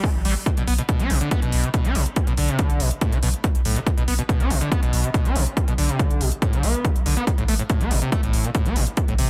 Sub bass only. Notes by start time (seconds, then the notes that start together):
0.15 A1
0.25 A1
0.57 B1
0.68 B1
1.00 B1
1.10 B1
1.42 B1
1.53 B1
1.85 B1
1.95 B1
2.27 B1
2.38 B1
2.70 B1
2.80 B1
3.12 B1
3.23 B1
3.55 B1
3.65 B1
3.97 B1
4.08 B1
4.40 B1
4.50 B1
4.82 B1
4.93 B1
5.25 B1
5.36 B1
5.68 B1
5.78 B1
6.10 B1
6.21 B1
6.53 B1
6.63 B1
6.96 B1
7.06 B1
7.38 A1
7.48 A1
7.81 A1
7.91 A1
8.23 A1
8.34 A1
8.66 A1
8.76 A1
9.08 A1
9.19 A1